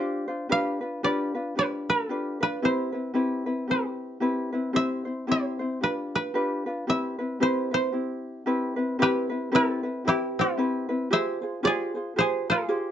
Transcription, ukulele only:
0.00 0.28 D4 medium
0.00 0.27 F4 medium
0.00 0.28 G4 medium
0.00 0.26 C5 medium
0.28 0.48 D4 soft
0.28 0.49 F4 soft
0.28 0.50 C5 medium
0.49 0.81 D4 medium
0.49 0.81 F4 medium
0.49 0.81 G4 medium
0.49 0.79 B4 medium
0.81 1.02 D4 soft
0.81 1.03 F4 soft
0.81 1.03 B4 soft
1.03 1.35 D4 medium
1.03 1.34 F4 medium
1.03 1.35 G4 medium
1.03 1.33 B4 medium
1.34 1.55 D4 soft
1.34 1.56 F4 soft
1.34 1.56 B4 soft
1.55 2.09 D4 soft
1.55 2.09 F4 soft
1.55 2.09 G4 soft
1.55 2.10 B4 medium
2.09 2.41 D4 medium
2.09 2.40 F4 medium
2.09 2.41 G4 medium
2.09 2.39 B4 medium
2.40 2.62 D4 soft
2.40 2.62 F4 soft
2.40 2.62 B4 soft
2.62 2.94 C4 medium
2.62 2.93 E4 medium
2.62 2.94 G4 medium
2.62 2.91 B4 medium
2.92 3.13 C4 soft
2.92 3.14 E4 soft
2.92 3.14 B4 soft
3.14 3.46 C4 medium
3.14 3.46 E4 medium
3.14 3.46 G4 medium
3.14 3.45 B4 medium
3.46 3.67 C4 soft
3.46 3.68 E4 soft
3.46 3.68 B4 medium
3.68 4.20 C4 medium
3.68 4.20 E4 soft
3.68 4.20 G4 medium
3.68 4.21 B4 medium
4.20 4.53 C4 medium
4.20 4.52 E4 medium
4.20 4.52 G4 medium
4.20 4.51 B4 medium
4.53 4.72 C4 soft
4.53 4.73 E4 medium
4.53 4.74 B4 soft
4.73 5.05 C4 medium
4.73 5.05 E4 medium
4.73 5.05 G4 medium
4.73 5.04 C5 medium
5.05 5.27 C4 soft
5.05 5.27 E4 soft
5.05 5.27 C5 soft
5.27 5.59 C4 medium
5.27 5.59 E4 medium
5.27 5.59 G4 medium
5.27 5.58 C5 medium
5.59 5.82 C4 soft
5.59 5.81 E4 soft
5.59 5.81 C5 soft
5.81 6.33 D4 soft
5.81 6.34 F4 soft
5.81 6.34 G4 soft
5.81 6.35 B4 soft
6.34 6.66 D4 medium
6.34 6.66 F4 medium
6.34 6.65 G4 medium
6.34 6.65 B4 medium
6.66 6.87 D4 soft
6.66 6.87 F4 soft
6.66 6.87 B4 soft
6.87 7.19 C4 medium
6.87 7.18 E4 medium
6.87 7.18 G4 medium
6.87 7.17 B4 medium
7.19 7.39 C4 soft
7.19 7.40 E4 soft
7.19 7.40 B4 soft
7.40 7.72 C4 medium
7.40 7.71 E4 medium
7.40 7.71 G4 medium
7.40 7.70 B4 medium
7.71 7.92 C4 soft
7.71 7.92 E4 soft
7.71 7.93 B4 soft
7.92 8.46 C4 soft
7.92 8.46 E4 soft
7.92 8.46 G4 soft
8.46 8.77 C4 medium
8.46 8.76 E4 medium
8.46 8.77 G4 medium
8.46 8.75 B4 medium
8.76 8.98 C4 soft
8.76 8.98 E4 soft
8.76 8.98 B4 medium
8.99 9.30 C4 medium
8.99 9.30 E4 medium
8.99 9.30 G4 medium
8.99 9.28 B4 medium
9.30 9.51 C4 soft
9.30 9.51 E4 soft
9.30 9.52 B4 medium
9.52 9.83 C4 medium
9.52 9.83 E4 medium
9.52 9.83 G4 medium
9.52 9.82 B4 medium
9.83 10.04 C4 soft
9.83 10.05 E4 soft
9.83 10.05 B4 medium
10.05 10.58 C4 soft
10.05 10.57 E4 medium
10.05 10.57 G4 medium
10.05 10.58 B4 medium
10.57 10.89 C4 medium
10.57 10.88 E4 medium
10.57 10.89 G4 medium
10.57 10.88 B4 medium
10.89 11.11 C4 soft
10.89 11.11 E4 soft
10.89 11.10 B4 medium
11.11 11.42 F4 medium
11.11 11.41 G4 medium
11.11 11.42 G#4 medium
11.11 11.40 C5 medium
11.42 11.62 F4 soft
11.42 11.63 G#4 soft
11.42 11.63 C5 soft
11.63 11.95 F4 medium
11.63 11.94 G4 medium
11.63 11.95 G#4 medium
11.63 11.94 C5 loud
11.95 12.15 F4 soft
11.95 12.16 G#4 soft
11.95 12.16 C5 soft
12.16 12.68 F4 soft
12.16 12.67 G4 medium
12.16 12.68 G#4 medium
12.16 12.69 C5 soft
12.68 12.91 F4 medium
12.68 12.91 G4 medium
12.68 12.91 G#4 medium
12.68 12.91 C5 medium

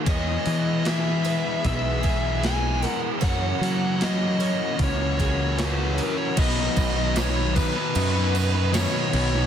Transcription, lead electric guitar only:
0.09 0.87 D#5 loud
0.88 1.65 E5 medium
1.66 2.46 E5 loud
2.45 2.87 G#5 loud
2.87 2.99 F#5 loud
3.24 4.04 F#5 loud
4.03 4.83 D#5 loud
4.84 5.58 C#5 medium
5.59 6.38 C#5 medium
5.63 6.01 B4 medium
6.01 6.16 A#4 medium
6.39 7.19 D#5 medium
7.18 7.56 C#5 loud
7.56 8.74 B4 loud
8.74 9.46 C#5 medium

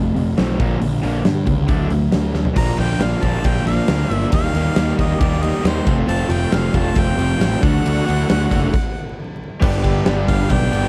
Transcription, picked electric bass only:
0.00 0.12 F1 medium
0.15 0.33 F1 medium
0.39 0.56 B1 medium
0.60 0.77 A#1 medium
0.82 0.99 A#1 medium
1.03 1.21 A#1 medium
1.25 1.43 G2 medium
1.47 1.65 C#2 medium
1.69 1.87 D2 medium
1.91 2.09 D2 medium
2.14 2.31 D2 medium
2.34 2.52 D2 medium
2.56 2.71 A#1 medium
2.78 2.93 A#1 medium
2.99 3.14 A#1 medium
3.22 3.37 A#1 medium
3.44 3.59 A#1 medium
3.65 3.80 A#1 medium
3.88 4.03 D2 medium
4.10 4.25 G1 medium
4.33 4.47 D#2 medium
4.54 4.69 D#2 medium
4.77 4.91 D#2 medium
4.99 5.13 D#2 medium
5.21 5.50 D#2 medium
5.65 5.79 D#2 medium
5.87 6.02 F1 medium
6.08 6.23 F1 medium
6.29 6.45 F1 loud
6.53 6.68 F1 medium
6.74 6.89 F1 medium
6.97 7.12 F1 medium
7.18 7.33 F1 medium
7.39 7.55 A1 medium
7.63 7.78 D2 medium
7.86 8.00 D2 medium
8.09 8.23 D2 medium
8.31 8.45 D2 loud
8.52 8.66 F#1 medium
9.63 10.01 G1 medium
10.06 10.26 G1 medium
10.28 10.48 G1 medium
10.51 10.70 B1 loud
10.73 10.88 G1 medium

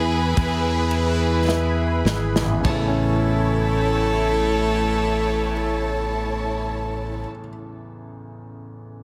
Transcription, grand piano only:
0.00 2.61 E3 medium
0.00 0.34 E4 medium
0.00 0.34 G#4 soft
0.00 0.35 B4 medium
1.48 2.61 E4 medium
1.48 2.62 G#4 soft
1.48 2.62 B4 medium
2.42 7.01 A1 medium
2.51 7.10 E2 medium
2.60 7.19 C#3 medium
2.69 7.28 E3 medium
2.79 7.38 A3 medium
2.88 7.47 C#4 medium

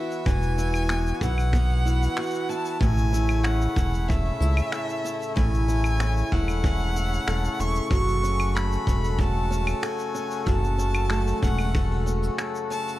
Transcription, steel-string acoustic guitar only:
0.00 0.25 E3 medium
0.00 0.89 B3 medium
0.00 0.58 E4 medium
0.00 2.16 F#4 medium
0.26 3.76 E3 medium
0.58 1.21 E4 medium
0.90 1.52 B3 medium
1.22 1.85 E4 medium
1.53 2.87 B3 medium
1.85 2.49 E4 medium
2.17 2.87 F#4 medium
2.49 3.12 E4 medium
2.81 5.34 A2 medium
3.13 3.76 E4 medium
3.45 4.08 C#4 medium
3.77 4.39 E4 medium
4.08 6.00 C#4 medium
4.40 5.03 E4 medium
4.72 7.27 A4 medium
5.05 5.67 E4 medium
5.36 7.91 A2 medium
5.68 6.31 E4 medium
6.00 6.64 C#4 medium
6.32 6.95 E4 medium
6.64 8.23 C#4 medium
6.96 7.58 E4 medium
7.28 9.82 A4 medium
7.59 7.98 E4 medium
7.91 10.45 F#2 medium
8.23 8.86 C#4 medium
8.55 9.19 A3 medium
8.87 9.49 C#4 medium
9.19 11.10 A3 medium
9.51 10.13 C#4 medium
9.83 12.38 A4 medium
10.15 10.77 C#4 medium
10.46 12.99 F#2 medium
10.78 11.41 C#4 medium
11.10 11.74 A3 medium
11.42 12.05 C#4 medium
11.75 12.99 A3 medium
12.06 12.69 C#4 medium
12.38 12.99 A4 medium
12.70 12.99 C#4 medium

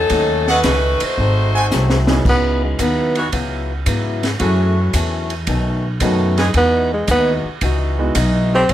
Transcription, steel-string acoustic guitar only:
0.11 0.49 D#3 medium
0.11 0.50 A3 soft
0.11 0.50 C#4 soft
0.11 0.50 F#4 medium
0.64 1.03 D#3 medium
0.64 1.03 A3 medium
0.64 1.03 C#4 medium
0.64 1.04 F#4 medium
1.18 1.56 G#2 medium
1.18 1.57 F#3 soft
1.18 1.57 A3 medium
1.18 1.57 C4 medium
1.71 2.10 G#2 medium
1.71 2.10 F#3 medium
1.71 2.10 A3 medium
1.71 2.11 C4 medium
2.25 2.64 C#3 soft
2.25 2.64 F#3 soft
2.25 2.64 B3 soft
2.25 2.65 E4 medium
2.78 3.17 C#3 medium
2.78 3.17 F#3 medium
2.78 3.18 B3 medium
2.78 3.18 E4 medium
3.32 3.71 C#3 medium
3.32 3.71 F#3 medium
3.32 3.72 B3 medium
3.32 3.72 E4 medium
3.86 4.25 C#3 medium
3.86 4.25 F#3 medium
3.86 4.25 B3 medium
3.86 4.25 E4 medium
4.40 4.78 F#2 medium
4.40 4.79 E3 medium
4.40 4.79 A3 medium
4.40 4.80 C#4 medium
4.94 5.32 F#2 medium
4.94 5.32 E3 medium
4.94 5.33 A3 medium
4.94 5.33 C#4 medium
5.47 5.86 B2 medium
5.47 5.86 D#3 medium
5.47 5.86 A3 medium
5.47 5.87 C#4 medium
6.01 6.39 B2 medium
6.01 6.40 D#3 medium
6.01 6.40 A3 medium
6.01 6.40 C#4 medium
6.54 6.93 E3 medium
6.54 6.93 G#3 medium
6.54 6.94 D#4 medium
6.54 6.94 F#4 medium
7.08 7.46 E3 medium
7.08 7.47 G#3 medium
7.08 7.47 D#4 medium
7.08 7.47 F#4 medium
7.62 8.00 E3 medium
7.62 8.01 G#3 medium
7.62 8.01 D#4 medium
7.62 8.01 F#4 medium
8.15 8.54 E3 medium
8.15 8.54 G#3 medium
8.15 8.54 D#4 medium
8.15 8.54 F#4 medium
8.69 8.73 A2 medium
8.69 8.73 G3 medium

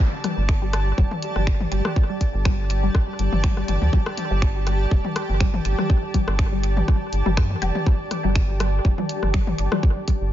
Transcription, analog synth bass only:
0.37 0.93 G1 loud
0.98 1.07 F1 medium
1.36 1.67 G1 medium
1.72 1.81 G1 loud
2.34 2.90 G1 loud
3.19 3.29 G1 loud
3.33 3.63 G1 medium
3.68 3.78 G1 medium
3.82 3.90 D2 medium
4.31 4.86 G1 loud
4.91 5.01 F1 medium
5.29 5.60 G1 medium
5.65 5.75 G1 loud
6.28 6.83 G1 loud
7.13 7.22 G1 loud
7.26 7.39 G1 medium
7.37 7.55 G2 medium
7.62 7.71 F1 medium
8.24 8.80 G1 loud
8.85 8.94 F1 medium
9.23 9.53 G1 medium
9.59 9.68 G1 loud
10.21 10.33 G1 loud

